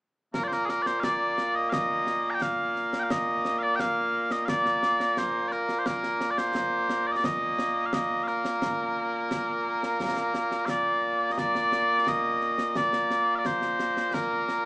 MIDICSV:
0, 0, Header, 1, 3, 480
1, 0, Start_track
1, 0, Key_signature, -2, "major"
1, 0, Tempo, 689655
1, 241, Time_signature, 4, 2, 24, 8
1, 10198, End_track
2, 0, Start_track
2, 0, Title_t, "Bagpipes"
2, 0, Program_c, 0, 109
2, 238, Note_on_c, 0, 46, 89
2, 238, Note_on_c, 0, 58, 89
2, 238, Note_on_c, 0, 70, 93
2, 305, Note_off_c, 0, 70, 0
2, 305, Note_on_c, 0, 74, 63
2, 333, Note_off_c, 0, 74, 0
2, 333, Note_on_c, 0, 72, 63
2, 370, Note_off_c, 0, 72, 0
2, 370, Note_on_c, 0, 70, 98
2, 456, Note_off_c, 0, 70, 0
2, 456, Note_on_c, 0, 68, 67
2, 486, Note_off_c, 0, 68, 0
2, 486, Note_on_c, 0, 70, 90
2, 574, Note_off_c, 0, 70, 0
2, 574, Note_on_c, 0, 74, 78
2, 604, Note_off_c, 0, 74, 0
2, 604, Note_on_c, 0, 72, 78
2, 695, Note_off_c, 0, 72, 0
2, 695, Note_on_c, 0, 77, 97
2, 724, Note_off_c, 0, 77, 0
2, 724, Note_on_c, 0, 74, 97
2, 1082, Note_off_c, 0, 74, 0
2, 1082, Note_on_c, 0, 75, 87
2, 1179, Note_off_c, 0, 75, 0
2, 1179, Note_on_c, 0, 77, 99
2, 1206, Note_off_c, 0, 77, 0
2, 1206, Note_on_c, 0, 75, 99
2, 1604, Note_off_c, 0, 75, 0
2, 1604, Note_on_c, 0, 82, 80
2, 1631, Note_off_c, 0, 82, 0
2, 1631, Note_on_c, 0, 79, 80
2, 1684, Note_off_c, 0, 79, 0
2, 1684, Note_on_c, 0, 77, 94
2, 2084, Note_off_c, 0, 77, 0
2, 2084, Note_on_c, 0, 79, 75
2, 2111, Note_off_c, 0, 79, 0
2, 2111, Note_on_c, 0, 77, 75
2, 2163, Note_off_c, 0, 77, 0
2, 2163, Note_on_c, 0, 75, 99
2, 2496, Note_off_c, 0, 75, 0
2, 2496, Note_on_c, 0, 77, 91
2, 2524, Note_off_c, 0, 77, 0
2, 2524, Note_on_c, 0, 74, 91
2, 2613, Note_off_c, 0, 74, 0
2, 2613, Note_on_c, 0, 79, 98
2, 2643, Note_off_c, 0, 79, 0
2, 2644, Note_on_c, 0, 77, 98
2, 3004, Note_off_c, 0, 77, 0
2, 3004, Note_on_c, 0, 75, 74
2, 3099, Note_off_c, 0, 75, 0
2, 3099, Note_on_c, 0, 77, 93
2, 3124, Note_off_c, 0, 77, 0
2, 3124, Note_on_c, 0, 74, 93
2, 3608, Note_off_c, 0, 74, 0
2, 3608, Note_on_c, 0, 72, 75
2, 3817, Note_off_c, 0, 72, 0
2, 3817, Note_on_c, 0, 74, 87
2, 3844, Note_off_c, 0, 74, 0
2, 3844, Note_on_c, 0, 70, 87
2, 4030, Note_off_c, 0, 70, 0
2, 4030, Note_on_c, 0, 72, 72
2, 4082, Note_off_c, 0, 72, 0
2, 4082, Note_on_c, 0, 70, 91
2, 4391, Note_off_c, 0, 70, 0
2, 4391, Note_on_c, 0, 74, 67
2, 4442, Note_off_c, 0, 74, 0
2, 4442, Note_on_c, 0, 72, 91
2, 4921, Note_off_c, 0, 72, 0
2, 4921, Note_on_c, 0, 74, 73
2, 4953, Note_off_c, 0, 74, 0
2, 4953, Note_on_c, 0, 75, 68
2, 4990, Note_off_c, 0, 75, 0
2, 4990, Note_on_c, 0, 74, 83
2, 5042, Note_off_c, 0, 74, 0
2, 5042, Note_on_c, 0, 75, 99
2, 5469, Note_off_c, 0, 75, 0
2, 5469, Note_on_c, 0, 77, 74
2, 5522, Note_off_c, 0, 77, 0
2, 5522, Note_on_c, 0, 75, 91
2, 5730, Note_off_c, 0, 75, 0
2, 5730, Note_on_c, 0, 77, 79
2, 5761, Note_off_c, 0, 77, 0
2, 5761, Note_on_c, 0, 70, 79
2, 7418, Note_off_c, 0, 70, 0
2, 7418, Note_on_c, 0, 77, 77
2, 7444, Note_off_c, 0, 77, 0
2, 7444, Note_on_c, 0, 74, 77
2, 7878, Note_off_c, 0, 74, 0
2, 7878, Note_on_c, 0, 75, 64
2, 7928, Note_off_c, 0, 75, 0
2, 7928, Note_on_c, 0, 74, 106
2, 8409, Note_off_c, 0, 74, 0
2, 8409, Note_on_c, 0, 75, 97
2, 8888, Note_off_c, 0, 75, 0
2, 8888, Note_on_c, 0, 74, 83
2, 9293, Note_off_c, 0, 74, 0
2, 9293, Note_on_c, 0, 77, 71
2, 9317, Note_off_c, 0, 77, 0
2, 9317, Note_on_c, 0, 74, 71
2, 9370, Note_off_c, 0, 74, 0
2, 9370, Note_on_c, 0, 72, 81
2, 9842, Note_off_c, 0, 72, 0
2, 9842, Note_on_c, 0, 70, 98
2, 10198, Note_off_c, 0, 46, 0
2, 10198, Note_off_c, 0, 58, 0
2, 10198, Note_off_c, 0, 70, 0
2, 10198, End_track
3, 0, Start_track
3, 0, Title_t, "Drums"
3, 237, Note_on_c, 9, 35, 52
3, 237, Note_on_c, 9, 38, 88
3, 307, Note_off_c, 9, 35, 0
3, 307, Note_off_c, 9, 38, 0
3, 360, Note_on_c, 9, 38, 60
3, 430, Note_off_c, 9, 38, 0
3, 480, Note_on_c, 9, 38, 65
3, 550, Note_off_c, 9, 38, 0
3, 599, Note_on_c, 9, 38, 66
3, 669, Note_off_c, 9, 38, 0
3, 719, Note_on_c, 9, 35, 48
3, 719, Note_on_c, 9, 38, 92
3, 789, Note_off_c, 9, 35, 0
3, 789, Note_off_c, 9, 38, 0
3, 960, Note_on_c, 9, 38, 74
3, 1029, Note_off_c, 9, 38, 0
3, 1199, Note_on_c, 9, 35, 58
3, 1199, Note_on_c, 9, 38, 95
3, 1269, Note_off_c, 9, 35, 0
3, 1269, Note_off_c, 9, 38, 0
3, 1439, Note_on_c, 9, 38, 70
3, 1509, Note_off_c, 9, 38, 0
3, 1679, Note_on_c, 9, 35, 50
3, 1679, Note_on_c, 9, 38, 82
3, 1749, Note_off_c, 9, 35, 0
3, 1749, Note_off_c, 9, 38, 0
3, 1922, Note_on_c, 9, 38, 31
3, 1991, Note_off_c, 9, 38, 0
3, 2039, Note_on_c, 9, 38, 79
3, 2109, Note_off_c, 9, 38, 0
3, 2160, Note_on_c, 9, 35, 57
3, 2160, Note_on_c, 9, 38, 99
3, 2230, Note_off_c, 9, 35, 0
3, 2230, Note_off_c, 9, 38, 0
3, 2401, Note_on_c, 9, 38, 70
3, 2471, Note_off_c, 9, 38, 0
3, 2640, Note_on_c, 9, 35, 50
3, 2640, Note_on_c, 9, 38, 88
3, 2710, Note_off_c, 9, 35, 0
3, 2710, Note_off_c, 9, 38, 0
3, 2997, Note_on_c, 9, 38, 73
3, 3066, Note_off_c, 9, 38, 0
3, 3120, Note_on_c, 9, 35, 57
3, 3120, Note_on_c, 9, 38, 99
3, 3189, Note_off_c, 9, 35, 0
3, 3189, Note_off_c, 9, 38, 0
3, 3241, Note_on_c, 9, 38, 65
3, 3310, Note_off_c, 9, 38, 0
3, 3360, Note_on_c, 9, 38, 77
3, 3429, Note_off_c, 9, 38, 0
3, 3481, Note_on_c, 9, 38, 69
3, 3551, Note_off_c, 9, 38, 0
3, 3599, Note_on_c, 9, 35, 45
3, 3599, Note_on_c, 9, 38, 83
3, 3668, Note_off_c, 9, 35, 0
3, 3668, Note_off_c, 9, 38, 0
3, 3838, Note_on_c, 9, 38, 27
3, 3908, Note_off_c, 9, 38, 0
3, 3958, Note_on_c, 9, 38, 70
3, 4028, Note_off_c, 9, 38, 0
3, 4077, Note_on_c, 9, 35, 51
3, 4077, Note_on_c, 9, 38, 88
3, 4147, Note_off_c, 9, 35, 0
3, 4147, Note_off_c, 9, 38, 0
3, 4200, Note_on_c, 9, 38, 60
3, 4269, Note_off_c, 9, 38, 0
3, 4320, Note_on_c, 9, 38, 77
3, 4389, Note_off_c, 9, 38, 0
3, 4440, Note_on_c, 9, 38, 74
3, 4510, Note_off_c, 9, 38, 0
3, 4558, Note_on_c, 9, 35, 49
3, 4558, Note_on_c, 9, 38, 90
3, 4627, Note_off_c, 9, 35, 0
3, 4627, Note_off_c, 9, 38, 0
3, 4799, Note_on_c, 9, 38, 78
3, 4869, Note_off_c, 9, 38, 0
3, 5038, Note_on_c, 9, 35, 66
3, 5038, Note_on_c, 9, 38, 101
3, 5108, Note_off_c, 9, 35, 0
3, 5108, Note_off_c, 9, 38, 0
3, 5280, Note_on_c, 9, 38, 84
3, 5349, Note_off_c, 9, 38, 0
3, 5518, Note_on_c, 9, 35, 52
3, 5518, Note_on_c, 9, 38, 107
3, 5588, Note_off_c, 9, 35, 0
3, 5588, Note_off_c, 9, 38, 0
3, 5757, Note_on_c, 9, 38, 33
3, 5827, Note_off_c, 9, 38, 0
3, 5879, Note_on_c, 9, 38, 86
3, 5949, Note_off_c, 9, 38, 0
3, 5999, Note_on_c, 9, 35, 63
3, 5999, Note_on_c, 9, 38, 91
3, 6069, Note_off_c, 9, 35, 0
3, 6069, Note_off_c, 9, 38, 0
3, 6480, Note_on_c, 9, 35, 50
3, 6480, Note_on_c, 9, 38, 97
3, 6550, Note_off_c, 9, 35, 0
3, 6550, Note_off_c, 9, 38, 0
3, 6842, Note_on_c, 9, 38, 69
3, 6912, Note_off_c, 9, 38, 0
3, 6960, Note_on_c, 9, 35, 55
3, 6960, Note_on_c, 9, 38, 99
3, 7030, Note_off_c, 9, 35, 0
3, 7030, Note_off_c, 9, 38, 0
3, 7078, Note_on_c, 9, 38, 66
3, 7148, Note_off_c, 9, 38, 0
3, 7198, Note_on_c, 9, 38, 77
3, 7267, Note_off_c, 9, 38, 0
3, 7317, Note_on_c, 9, 38, 74
3, 7387, Note_off_c, 9, 38, 0
3, 7434, Note_on_c, 9, 35, 51
3, 7434, Note_on_c, 9, 38, 96
3, 7503, Note_off_c, 9, 35, 0
3, 7503, Note_off_c, 9, 38, 0
3, 7918, Note_on_c, 9, 35, 59
3, 7918, Note_on_c, 9, 38, 89
3, 7988, Note_off_c, 9, 35, 0
3, 7988, Note_off_c, 9, 38, 0
3, 8040, Note_on_c, 9, 38, 66
3, 8109, Note_off_c, 9, 38, 0
3, 8158, Note_on_c, 9, 38, 70
3, 8228, Note_off_c, 9, 38, 0
3, 8399, Note_on_c, 9, 35, 54
3, 8399, Note_on_c, 9, 38, 88
3, 8469, Note_off_c, 9, 35, 0
3, 8469, Note_off_c, 9, 38, 0
3, 8638, Note_on_c, 9, 38, 28
3, 8707, Note_off_c, 9, 38, 0
3, 8757, Note_on_c, 9, 38, 80
3, 8827, Note_off_c, 9, 38, 0
3, 8877, Note_on_c, 9, 35, 55
3, 8877, Note_on_c, 9, 38, 93
3, 8947, Note_off_c, 9, 35, 0
3, 8947, Note_off_c, 9, 38, 0
3, 8999, Note_on_c, 9, 38, 70
3, 9068, Note_off_c, 9, 38, 0
3, 9121, Note_on_c, 9, 38, 70
3, 9190, Note_off_c, 9, 38, 0
3, 9361, Note_on_c, 9, 35, 53
3, 9361, Note_on_c, 9, 38, 79
3, 9431, Note_off_c, 9, 35, 0
3, 9431, Note_off_c, 9, 38, 0
3, 9479, Note_on_c, 9, 38, 61
3, 9548, Note_off_c, 9, 38, 0
3, 9601, Note_on_c, 9, 38, 81
3, 9670, Note_off_c, 9, 38, 0
3, 9722, Note_on_c, 9, 38, 69
3, 9792, Note_off_c, 9, 38, 0
3, 9843, Note_on_c, 9, 35, 57
3, 9843, Note_on_c, 9, 38, 91
3, 9912, Note_off_c, 9, 35, 0
3, 9912, Note_off_c, 9, 38, 0
3, 10081, Note_on_c, 9, 38, 66
3, 10151, Note_off_c, 9, 38, 0
3, 10198, End_track
0, 0, End_of_file